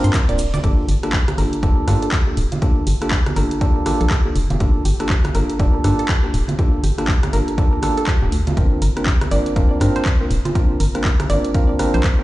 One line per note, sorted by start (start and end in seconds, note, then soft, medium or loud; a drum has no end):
0.00 0.11 A#3 medium
0.00 0.11 C4 medium
0.00 0.11 D4 medium
0.00 0.11 F4 medium
0.00 0.11 A#4 loud
0.00 0.60 A#4 medium
0.00 0.60 D5 medium
0.00 0.60 C6 medium
0.04 0.10 G2 loud
0.04 0.09 C6 medium
0.04 closed hi-hat soft
0.04 cabasa medium
0.14 0.24 A#4 medium
0.14 kick loud
0.14 clap loud
0.14 closed hi-hat medium
0.14 cabasa soft
0.29 0.58 D1 medium
0.29 0.39 A#3 medium
0.29 0.39 C4 medium
0.29 0.40 D4 medium
0.29 0.40 F4 medium
0.29 0.40 A#4 medium
0.29 0.36 D5 medium
0.29 closed hi-hat medium
0.38 open hi-hat medium
0.38 ride medium
0.38 cabasa medium
0.54 0.58 D5 medium
0.54 closed hi-hat soft
0.54 high conga loud
0.54 cabasa soft
0.63 0.81 G1 loud
0.63 0.85 A#3 medium
0.63 0.85 D4 medium
0.63 0.70 F4 medium
0.63 0.85 F4 medium
0.63 0.85 G4 medium
0.63 0.85 A4 medium
0.63 kick loud
0.63 closed hi-hat medium
0.88 0.98 G1 loud
0.88 0.92 G4 medium
0.88 open hi-hat loud
1.03 1.14 A#3 medium
1.03 1.14 D4 medium
1.03 1.14 F4 medium
1.03 1.14 G4 medium
1.03 1.14 A4 medium
1.03 cross-stick medium
1.03 closed hi-hat medium
1.13 1.23 G4 medium
1.13 kick loud
1.13 clap loud
1.28 1.33 G4 medium
1.28 cross-stick medium
1.28 closed hi-hat medium
1.28 high conga medium
1.38 1.47 G1 medium
1.38 1.60 A#3 medium
1.38 1.60 D4 medium
1.38 1.60 F4 medium
1.38 1.61 G4 medium
1.38 1.61 A4 medium
1.38 1.45 A#4 loud
1.38 open hi-hat medium
1.53 closed hi-hat medium
1.63 1.72 F1 medium
1.63 1.85 A#3 medium
1.63 1.86 D4 medium
1.63 1.86 F4 medium
1.63 1.86 G4 medium
1.63 1.86 A4 medium
1.63 1.69 D5 medium
1.63 kick loud
1.63 closed hi-hat medium
1.78 1.82 A#4 medium
1.87 1.97 G2 medium
1.87 2.09 A#3 medium
1.87 2.09 D4 medium
1.87 2.09 F4 medium
1.87 2.09 G4 medium
1.87 2.09 A4 medium
1.87 cross-stick medium
1.87 open hi-hat loud
1.87 high conga medium
2.02 2.09 A4 loud
2.02 closed hi-hat medium
2.12 kick loud
2.12 clap loud
2.12 closed hi-hat medium
2.27 2.38 A#3 medium
2.27 2.38 D4 medium
2.27 2.38 F4 medium
2.27 2.32 G4 medium
2.27 2.38 G4 medium
2.27 2.38 A4 medium
2.37 2.46 D1 loud
2.37 open hi-hat medium
2.52 2.59 F4 medium
2.52 closed hi-hat medium
2.52 high conga medium
2.62 2.83 A#3 medium
2.62 2.83 D4 medium
2.62 2.69 F4 medium
2.62 2.84 F4 medium
2.62 2.84 G4 medium
2.62 2.84 A4 medium
2.62 kick loud
2.62 closed hi-hat medium
2.87 2.96 G1 medium
2.87 2.91 G4 medium
2.87 open hi-hat loud
3.01 3.12 A#3 medium
3.01 3.12 D4 medium
3.01 3.12 F4 medium
3.01 3.12 G4 medium
3.01 3.12 A4 medium
3.01 cross-stick medium
3.01 closed hi-hat soft
3.11 3.22 G4 medium
3.11 kick loud
3.11 clap loud
3.26 3.31 G4 medium
3.26 cross-stick medium
3.26 closed hi-hat medium
3.26 high conga medium
3.36 3.46 G1 medium
3.36 3.59 A#3 medium
3.36 3.59 D4 medium
3.36 3.59 F4 medium
3.36 3.59 G4 medium
3.36 3.59 A4 medium
3.36 3.43 A#4 loud
3.36 open hi-hat medium
3.51 closed hi-hat soft
3.61 3.84 A#3 medium
3.61 3.84 D4 medium
3.61 3.84 F4 medium
3.61 3.84 G4 medium
3.61 3.84 A4 medium
3.61 3.68 D5 medium
3.61 kick loud
3.61 closed hi-hat medium
3.76 3.80 A#4 medium
3.86 4.07 A#3 medium
3.86 4.07 D4 medium
3.86 4.07 F4 medium
3.86 4.08 G4 medium
3.86 4.08 A4 medium
3.86 cross-stick medium
3.86 open hi-hat loud
3.86 high conga medium
4.01 4.07 A#1 loud
4.01 4.08 A4 loud
4.01 closed hi-hat soft
4.10 kick loud
4.10 clap loud
4.10 closed hi-hat medium
4.25 4.36 A#3 medium
4.25 4.36 D4 medium
4.25 4.36 F4 medium
4.25 4.30 G4 medium
4.25 4.36 G4 medium
4.25 4.36 A4 medium
4.36 4.45 F1 loud
4.36 open hi-hat medium
4.50 4.57 F1 medium
4.50 4.57 F4 medium
4.50 closed hi-hat medium
4.50 high conga medium
4.60 4.78 G1 loud
4.60 4.82 A#3 medium
4.60 4.82 D4 medium
4.60 4.82 F4 medium
4.60 4.67 F4 medium
4.60 4.82 G4 medium
4.60 4.82 A4 loud
4.60 kick loud
4.60 closed hi-hat medium
4.85 4.94 G1 medium
4.85 4.89 G4 medium
4.85 open hi-hat loud
5.00 5.10 A#3 medium
5.00 5.11 D4 medium
5.00 5.11 F4 medium
5.00 5.11 G4 medium
5.00 5.11 A4 medium
5.00 cross-stick medium
5.00 closed hi-hat soft
5.09 5.20 G4 medium
5.09 kick loud
5.09 clap loud
5.24 5.29 G4 medium
5.24 cross-stick medium
5.24 closed hi-hat medium
5.24 high conga medium
5.34 5.44 G1 medium
5.34 5.57 A#3 medium
5.34 5.57 D4 medium
5.34 5.57 F4 medium
5.34 5.57 G4 medium
5.34 5.57 A4 medium
5.34 5.41 A#4 loud
5.34 open hi-hat medium
5.50 closed hi-hat soft
5.59 5.69 F1 medium
5.59 5.82 A#3 medium
5.59 5.82 D4 medium
5.59 5.82 F4 medium
5.59 5.82 G4 medium
5.59 5.82 A4 medium
5.59 5.66 D5 medium
5.59 kick loud
5.59 closed hi-hat medium
5.75 5.79 A#4 medium
5.84 5.93 G2 medium
5.84 6.06 A#3 medium
5.84 6.06 D4 medium
5.84 6.06 F4 medium
5.84 6.06 G4 medium
5.84 6.06 A4 medium
5.84 cross-stick medium
5.84 open hi-hat loud
5.84 high conga medium
5.99 6.06 A4 loud
5.99 closed hi-hat soft
6.09 kick loud
6.09 clap loud
6.09 closed hi-hat medium
6.24 6.34 A#3 medium
6.24 6.35 D4 medium
6.24 6.35 F4 medium
6.24 6.28 G4 medium
6.24 6.35 G4 medium
6.24 6.35 A4 medium
6.34 6.43 D1 loud
6.34 open hi-hat loud
6.48 6.55 F4 medium
6.48 closed hi-hat soft
6.48 high conga medium
6.58 6.80 A#3 medium
6.58 6.80 D4 medium
6.58 6.65 F4 medium
6.58 6.80 F4 medium
6.58 6.80 G4 medium
6.58 6.80 A4 loud
6.58 kick loud
6.58 closed hi-hat medium
6.83 6.93 G1 loud
6.83 6.88 G4 medium
6.83 open hi-hat loud
6.98 7.09 A#3 medium
6.98 7.09 D4 medium
6.98 7.09 F4 medium
6.98 7.09 G4 medium
6.98 7.09 A4 medium
6.98 cross-stick medium
6.98 closed hi-hat soft
7.08 7.18 G4 medium
7.08 kick loud
7.08 clap loud
7.23 7.28 G4 medium
7.23 cross-stick medium
7.23 closed hi-hat medium
7.23 high conga medium
7.33 7.42 G1 medium
7.33 7.55 A#3 medium
7.33 7.55 D4 medium
7.33 7.56 F4 medium
7.33 7.56 G4 medium
7.33 7.56 A4 medium
7.33 7.40 A#4 loud
7.33 open hi-hat medium
7.48 closed hi-hat soft
7.58 7.81 A#3 medium
7.58 7.81 D4 medium
7.58 7.81 F4 medium
7.58 7.81 G4 medium
7.58 7.81 A4 medium
7.58 7.65 D5 medium
7.58 kick loud
7.58 closed hi-hat medium
7.73 7.77 A#4 medium
7.82 8.04 A#3 medium
7.82 8.04 D4 medium
7.82 8.04 F4 medium
7.82 8.04 G4 medium
7.82 8.04 A4 medium
7.82 cross-stick medium
7.82 open hi-hat loud
7.82 high conga medium
7.97 8.04 A4 loud
7.97 closed hi-hat soft
8.07 kick loud
8.07 clap loud
8.07 closed hi-hat medium
8.22 8.28 D1 loud
8.22 8.33 A#3 medium
8.22 8.33 D4 medium
8.22 8.33 F4 medium
8.22 8.27 G4 medium
8.22 8.33 G4 medium
8.22 8.33 A4 medium
8.32 8.41 D2 medium
8.32 open hi-hat loud
8.47 8.54 F4 medium
8.47 closed hi-hat soft
8.47 high conga medium
8.57 8.74 G1 loud
8.57 8.78 A#3 medium
8.57 8.78 C4 medium
8.57 8.79 D4 medium
8.57 8.64 F4 medium
8.57 8.79 F4 medium
8.57 8.79 A#4 loud
8.57 kick loud
8.57 closed hi-hat medium
8.82 8.91 G1 medium
8.82 8.86 A#4 medium
8.82 open hi-hat loud
8.96 9.07 A#3 medium
8.96 9.07 C4 medium
8.96 9.07 D4 medium
8.96 9.07 F4 medium
8.96 9.07 A#4 medium
8.96 cross-stick medium
8.96 closed hi-hat soft
9.06 9.17 A#4 medium
9.06 kick loud
9.06 clap loud
9.21 9.26 A#4 medium
9.21 cross-stick medium
9.21 closed hi-hat medium
9.21 high conga medium
9.31 9.41 G1 medium
9.31 9.54 A#3 medium
9.31 9.54 C4 medium
9.31 9.54 D4 medium
9.31 9.54 F4 medium
9.31 9.54 A#4 medium
9.31 9.38 D5 loud
9.31 open hi-hat medium
9.46 closed hi-hat soft
9.56 9.65 F1 medium
9.56 9.79 A#3 medium
9.56 9.79 C4 medium
9.56 9.79 D4 medium
9.56 9.79 F4 medium
9.56 9.79 A#4 medium
9.56 9.63 F5 medium
9.56 kick loud
9.56 closed hi-hat medium
9.71 9.76 D5 medium
9.80 9.90 G2 medium
9.80 10.02 A#3 medium
9.80 10.02 C4 medium
9.80 10.02 D4 medium
9.80 10.03 F4 medium
9.80 10.03 A#4 loud
9.80 cross-stick medium
9.80 open hi-hat loud
9.80 high conga medium
9.96 10.03 C5 loud
9.96 closed hi-hat soft
10.05 kick loud
10.05 clap loud
10.05 closed hi-hat medium
10.20 10.31 A#3 medium
10.20 10.31 C4 medium
10.20 10.31 D4 medium
10.20 10.31 F4 medium
10.20 10.25 A#4 medium
10.20 10.31 A#4 medium
10.31 10.40 D1 loud
10.31 open hi-hat loud
10.45 10.52 F4 medium
10.45 closed hi-hat soft
10.45 high conga medium
10.55 10.77 A#3 medium
10.55 10.77 C4 medium
10.55 10.77 D4 medium
10.55 10.62 F4 medium
10.55 10.77 F4 medium
10.55 10.77 A#4 loud
10.55 kick loud
10.55 closed hi-hat medium
10.80 10.89 G1 loud
10.80 10.84 A#4 medium
10.80 open hi-hat loud
10.95 11.05 A#3 medium
10.95 11.06 C4 medium
10.95 11.06 D4 medium
10.95 11.06 F4 medium
10.95 11.06 A#4 medium
10.95 cross-stick medium
10.95 closed hi-hat soft
11.04 11.15 A#4 medium
11.04 kick loud
11.04 clap loud
11.20 11.24 A#4 medium
11.20 cross-stick medium
11.20 closed hi-hat medium
11.20 high conga medium
11.29 11.39 G1 medium
11.29 11.52 A#3 medium
11.29 11.52 C4 medium
11.29 11.52 D4 medium
11.29 11.52 F4 medium
11.29 11.52 A#4 medium
11.29 11.36 D5 loud
11.29 open hi-hat medium
11.45 closed hi-hat medium
11.54 11.77 A#3 medium
11.54 11.77 C4 medium
11.54 11.77 D4 medium
11.54 11.77 F4 medium
11.54 11.78 A#4 medium
11.54 11.61 F5 medium
11.54 kick loud
11.54 closed hi-hat medium
11.69 11.74 D5 medium
11.79 12.01 A#3 medium
11.79 12.01 C4 medium
11.79 12.01 D4 medium
11.79 12.01 F4 medium
11.79 12.01 A#4 medium
11.79 cross-stick medium
11.79 open hi-hat loud
11.79 high conga medium
11.94 12.00 A#1 loud
11.94 12.01 C5 loud
11.94 closed hi-hat medium
12.04 kick loud
12.04 clap loud
12.04 closed hi-hat medium
12.19 12.23 A#3 medium
12.19 12.23 C4 medium
12.19 12.23 D4 medium
12.19 12.23 F4 medium
12.19 12.23 A#4 medium